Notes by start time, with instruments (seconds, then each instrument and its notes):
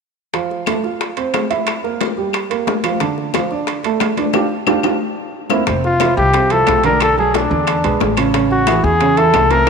0.33 grand piano F3 F4, high bongo, high conga, high timbale
0.50 high bongo, high conga
0.66 grand piano A3 A4, high bongo, high conga, high timbale, low timbale, claves
0.84 grand piano F4 F5, high bongo, high conga
1.01 high bongo, high conga, high timbale
1.17 grand piano C4 C5, high bongo, high conga, high timbale
1.34 high bongo, low bongo, high conga, high timbale, low timbale, claves
1.50 grand piano E4 E5, high conga, high timbale
1.67 high bongo, high conga, high timbale, claves
1.84 grand piano A#3 A#4, high bongo, high conga
2.01 high bongo, high conga, high timbale, low timbale
2.17 grand piano G3 G4, high conga
2.33 high bongo, high conga, high timbale, claves
2.50 grand piano A#3 A#4, high bongo, high conga, high timbale
2.67 high bongo, low bongo, high conga, low timbale
2.84 grand piano F3 F4, high bongo, high conga, high timbale, claves
3.00 grand piano D3 D4, high bongo, high conga, high timbale
3.18 high bongo, high conga
3.34 grand piano F3 F4, high bongo, high conga, high timbale, low timbale, claves
3.51 grand piano D4 D5, high bongo, high conga
3.67 high bongo, high conga, high timbale
3.83 grand piano A3 A4, high bongo, high conga, high timbale
4.00 high bongo, low bongo, high conga, high timbale, low timbale, claves
4.17 grand piano D4 D5, high conga, high timbale
4.33 grand piano D4 F4 G4, low bongo, high conga, high timbale, claves
4.67 grand piano D4 F4 G4, low bongo, high conga, high timbale, claves
4.83 grand piano D4 F4 G4, low bongo, high conga, high timbale, claves
5.50 grand piano A#3 C4 E4, low bongo, high conga, high timbale, claves
5.67 upright bass F1, grand piano C3 C4 C5, high bongo, high conga, high timbale
5.84 trumpet F4, high bongo, high conga
6.00 grand piano F3 E4 F4, high bongo, high conga, high timbale, low timbale, claves
6.17 upright bass C2, trumpet G4, high bongo, high conga
6.33 grand piano C3 C4 C5, high bongo, high conga, high timbale
6.50 grand piano F3 E4 F4, trumpet A4, high bongo, high conga, high timbale
6.66 upright bass B1, high bongo, low bongo, high conga, high timbale, low timbale, claves
6.83 grand piano D3 D4 D5, trumpet A#4, high conga, high timbale
7.00 trumpet A4, high bongo, high conga, high timbale, claves
7.17 grand piano F#3 F#4 A4, trumpet G#4, high bongo, high conga
7.34 trumpet D4, high bongo, high conga, high timbale, low timbale
7.51 upright bass E2, grand piano D3 D4 D5, high conga
7.67 high bongo, high conga, high timbale, claves
7.84 upright bass B1, grand piano G#3 G#4 B4, high bongo, high conga, high timbale
8.00 upright bass A1, high bongo, low bongo, high conga, low timbale
8.17 grand piano C#3 C#4 C#5, high bongo, high conga, high timbale, claves
8.34 grand piano C#3 C#4 C#5, high bongo, high conga, high timbale
8.51 trumpet F#4, high bongo, high conga
8.67 grand piano E3 E4 G#4, high bongo, high conga, high timbale, low timbale, claves
8.84 upright bass E2, trumpet G#4, high bongo, high conga
9.00 grand piano C#3 C#4 C#5, high bongo, high conga, high timbale
9.17 grand piano E3 E4 A4, trumpet A4, high bongo, high conga, high timbale
9.33 upright bass C2, high bongo, low bongo, high conga, high timbale, low timbale, claves
9.50 grand piano C3 C4 C5, trumpet A#4, high conga, high timbale